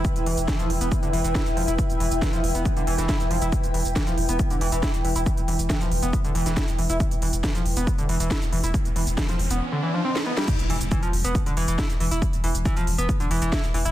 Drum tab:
CC |----------------|----------------|----------------|----------------|
HH |xxoxxxoxxxoxxxox|xxoxxxoxxxoxxxox|xxoxxxoxxxoxxxox|xxoxxxoxxxoxxxox|
SH |xx-xxx-xxx-xxx-x|xx-xxx-xxx-xxx-x|xx-xxx-xxx-xxx-x|xx-xxx-xxx-xxx-x|
SD |----o-------o---|----o------oo---|----o-------o---|----o------oo---|
BD |o---o---o---o---|o---o---o---o---|o---o---o---o---|o---o---o---o---|

CC |----------------|----------------|x---------------|----------------|
HH |xxoxxxoxxxoxxxox|xxoxxxox--------|xxoxxxoxxxoxxxox|xxoxxxoxxxoxxxox|
SH |xx-xxx-xxx-xxx-x|xx-xxx-x--------|xx-xxx-xxx-xxx-x|xx-xxx-xxx-xxx-x|
SD |----o-------o---|----oo-------o-o|------------o---|------------o---|
BD |o---o---o---o---|o---o-----------|o---o---o---o---|o---o---o---o---|